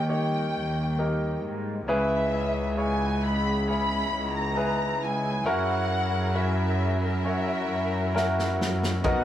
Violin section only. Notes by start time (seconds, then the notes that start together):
0.10 G5
1.90 E5
2.79 G#5
3.24 B5
3.69 B5
4.37 A#5
5.03 G#5
5.48 F#5
6.36 E5
7.03 E5
9.04 F#5